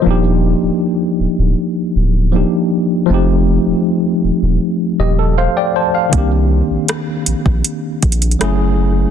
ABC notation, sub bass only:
X:1
M:4/4
L:1/16
Q:1/4=79
K:Eb
V:1 name="Sub bass" clef=bass
E,,,3 D,,, z2 D,,, D,,, z2 D,,,3 z3 | F,,,3 E,,, z2 E,,, E,,, z2 E,,,3 z3 | C,,3 B,,, z2 B,,, B,,, z2 B,,,2 ^F,,,4 |]